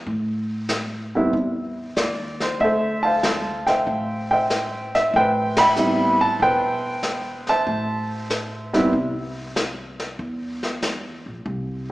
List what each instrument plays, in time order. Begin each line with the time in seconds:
0.06 upright bass A2, brush sweep, kick
0.69 snare, hi-hat pedal
1.15 grand piano G3 B3 C4 E4
1.33 upright bass E2, brush sweep, kick
1.96 upright bass D#2, grand piano D5, snare, hi-hat pedal
2.40 grand piano C5, snare
2.60 upright bass D2, grand piano A4 C5 E5, brush sweep, kick
3.03 grand piano C5 F5 A5
3.23 snare, hi-hat pedal
3.67 grand piano C5 E5 G5, snare
3.87 upright bass A1, brush sweep, kick
4.31 grand piano C5 E5 G5
4.50 snare, hi-hat pedal
4.95 grand piano E5, snare
5.14 upright bass A1, grand piano B4 C5 G5, brush sweep, kick
5.56 grand piano E5 G5 B5, snare, ride
5.76 grand piano G3 B3 C4 E4, hi-hat pedal
6.21 grand piano A5
6.40 upright bass E1, grand piano B4 C5 G5, brush sweep, kick
7.03 snare, hi-hat pedal
7.47 grand piano C5 E5 A5, snare
7.67 upright bass A1, brush sweep, kick
8.30 snare, hi-hat pedal
8.73 grand piano G3 B3 C4 E4, snare
8.93 upright bass C2, brush sweep, kick
9.56 snare, hi-hat pedal
10.00 snare
10.19 upright bass E2, brush sweep, kick
10.63 snare
10.82 snare, hi-hat pedal
11.26 upright bass A#1
11.45 upright bass C2, brush sweep, kick